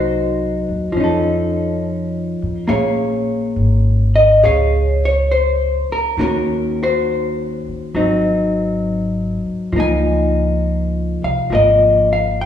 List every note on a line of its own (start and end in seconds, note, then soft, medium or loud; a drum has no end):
0.00 0.64 C2 medium
0.00 0.92 F#3 soft
0.00 0.96 D#4 soft
0.00 0.92 F#4 soft
0.00 1.03 C5 medium
0.69 0.93 D#2 medium
0.92 2.37 F2 medium
0.92 2.67 F3 soft
0.97 2.69 C#4 soft
0.97 2.71 D#4 soft
1.04 2.69 A4 soft
2.42 2.67 F2 medium
2.68 3.52 A#1 medium
2.68 6.18 A#3 soft
2.68 4.42 C#4 soft
2.68 4.40 G#4 medium
2.68 4.40 C#5 medium
2.68 3.52 F5 medium
3.56 4.40 G#1 medium
4.16 4.44 D#5 medium
4.43 5.87 C#2 medium
4.43 6.18 C#4 soft
4.43 6.15 G#4 medium
4.43 5.04 C#5 medium
4.43 5.00 F5 medium
5.05 5.31 C#5 medium
5.31 5.92 C5 medium
5.90 6.20 A#4 medium
5.90 muted upright bass stroke soft
6.17 7.62 D#2 medium
6.17 7.95 D#3 soft
6.17 7.94 A#3 medium
6.17 7.91 C#4 soft
6.17 6.21 F#4 soft
6.21 6.82 F#4 medium
6.21 6.82 A#4 medium
6.83 7.96 F#4 soft
6.83 8.55 C5 medium
7.68 muted upright bass stroke soft
7.94 9.42 G#1 medium
7.94 9.72 F#3 soft
7.94 9.74 C4 soft
7.94 9.74 D#4 soft
9.44 muted upright bass stroke soft
9.72 11.18 C#2 medium
9.72 11.49 F3 soft
9.72 11.51 A#3 soft
9.78 11.51 D#4 soft
9.78 11.22 G#5 medium
11.22 11.48 C2 medium
11.22 11.52 F5 medium
11.50 12.46 G#1 medium
11.50 12.46 F3 soft
11.50 12.46 A#3 soft
11.50 11.54 G#4 soft
11.50 12.46 A#4 soft
11.55 12.09 D#5 medium
12.13 12.37 F5 medium
12.41 12.46 G5 medium